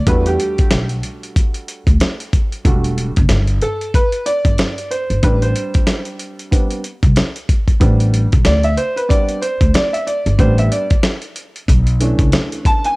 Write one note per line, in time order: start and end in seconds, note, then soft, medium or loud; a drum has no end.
0.07 0.36 E2 loud
0.07 2.61 G3 medium
0.07 2.61 A3 medium
0.07 2.61 D4 soft
0.07 2.61 F#4 medium
0.07 0.27 B4 medium
0.07 kick loud
0.07 closed hi-hat medium
0.26 0.87 G4 medium
0.26 closed hi-hat medium
0.40 closed hi-hat medium
0.58 kick medium
0.58 closed hi-hat soft
0.71 1.00 B1 medium
0.71 snare loud
0.71 closed hi-hat medium
0.89 closed hi-hat soft
1.03 closed hi-hat medium
1.23 closed hi-hat soft
1.36 kick loud
1.36 closed hi-hat loud
1.54 closed hi-hat medium
1.68 closed hi-hat medium
1.87 1.99 D2 medium
1.87 kick loud
1.87 closed hi-hat soft
2.00 snare loud
2.00 closed hi-hat medium
2.20 closed hi-hat medium
2.33 kick medium
2.33 closed hi-hat medium
2.52 closed hi-hat soft
2.65 3.11 E1 loud
2.65 3.10 G3 medium
2.65 3.10 A3 medium
2.65 3.10 D4 medium
2.65 3.10 F#4 medium
2.65 kick loud
2.65 closed hi-hat medium
2.84 closed hi-hat medium
2.98 closed hi-hat medium
3.16 3.29 F#1 medium
3.16 kick medium
3.16 closed hi-hat medium
3.29 3.58 G1 loud
3.29 snare loud
3.29 closed hi-hat medium
3.47 closed hi-hat soft
3.62 3.95 A4 medium
3.62 closed hi-hat medium
3.81 closed hi-hat soft
3.94 4.27 B4 loud
3.94 kick medium
3.94 closed hi-hat loud
4.12 closed hi-hat medium
4.26 4.93 D5 loud
4.26 closed hi-hat medium
4.45 4.57 G1 medium
4.45 kick medium
4.45 closed hi-hat soft
4.58 snare loud
4.58 closed hi-hat medium
4.78 closed hi-hat medium
4.91 5.24 C5 medium
4.91 closed hi-hat medium
5.10 5.22 G1 medium
5.10 closed hi-hat soft
5.23 5.52 A1 loud
5.23 6.50 G3 medium
5.23 6.50 C4 medium
5.23 6.50 D4 medium
5.23 5.43 B4 medium
5.23 kick loud
5.23 closed hi-hat medium
5.42 6.03 C5 medium
5.42 closed hi-hat medium
5.56 closed hi-hat medium
5.74 kick medium
5.74 closed hi-hat medium
5.87 snare loud
5.87 closed hi-hat medium
6.05 closed hi-hat soft
6.19 closed hi-hat medium
6.39 closed hi-hat soft
6.51 6.81 G3 soft
6.51 6.81 B3 soft
6.51 6.81 C4 soft
6.51 6.81 D4 medium
6.51 kick loud
6.51 closed hi-hat loud
6.71 closed hi-hat medium
6.84 closed hi-hat medium
7.03 7.15 C2 medium
7.03 kick loud
7.03 closed hi-hat soft
7.16 snare loud
7.16 closed hi-hat medium
7.36 closed hi-hat medium
7.49 kick medium
7.49 closed hi-hat medium
7.68 kick medium
7.68 closed hi-hat medium
7.80 8.27 A1 loud
7.80 8.26 G3 medium
7.80 8.26 B3 medium
7.80 8.26 C4 medium
7.80 8.26 D4 medium
7.80 kick loud
7.80 closed hi-hat medium
8.00 closed hi-hat medium
8.14 closed hi-hat medium
8.32 8.45 B1 medium
8.32 kick medium
8.32 closed hi-hat medium
8.45 8.75 D2 loud
8.45 8.65 D5 loud
8.45 snare loud
8.45 closed hi-hat medium
8.63 8.78 E5 loud
8.63 closed hi-hat soft
8.77 8.97 C5 medium
8.77 closed hi-hat medium
8.96 9.09 B4 medium
8.96 closed hi-hat soft
9.09 9.38 G3 medium
9.09 9.38 B3 soft
9.09 9.39 C4 soft
9.09 9.39 D4 medium
9.09 9.43 D5 medium
9.09 kick medium
9.09 closed hi-hat loud
9.28 closed hi-hat medium
9.41 9.75 C5 medium
9.41 closed hi-hat medium
9.61 9.73 D2 medium
9.61 kick medium
9.61 closed hi-hat medium
9.74 9.94 D5 loud
9.74 snare loud
9.74 closed hi-hat medium
9.93 10.07 E5 medium
9.93 closed hi-hat medium
10.07 10.40 D5 medium
10.07 closed hi-hat medium
10.26 10.38 G1 medium
10.26 closed hi-hat soft
10.38 10.68 A1 loud
10.38 10.84 G3 medium
10.38 10.84 B3 medium
10.38 10.84 C4 medium
10.38 10.85 D4 medium
10.38 10.57 C5 medium
10.38 kick loud
10.38 closed hi-hat medium
10.58 10.72 E5 medium
10.58 closed hi-hat medium
10.72 11.02 D5 medium
10.72 closed hi-hat medium
10.90 kick loud
10.90 closed hi-hat soft
11.03 snare loud
11.03 closed hi-hat medium
11.22 closed hi-hat soft
11.36 closed hi-hat medium
11.56 closed hi-hat soft
11.68 12.14 B1 loud
11.68 kick loud
11.68 closed hi-hat loud
11.87 closed hi-hat medium
12.00 12.93 E3 medium
12.00 12.93 A3 medium
12.00 12.93 C#4 soft
12.00 12.94 D4 medium
12.00 closed hi-hat medium
12.19 12.31 C#2 medium
12.19 kick medium
12.19 closed hi-hat soft
12.32 snare loud
12.32 closed hi-hat medium
12.52 closed hi-hat medium
12.65 12.85 A5 loud
12.65 kick medium
12.65 closed hi-hat medium
12.84 12.96 G#5 loud
12.84 closed hi-hat medium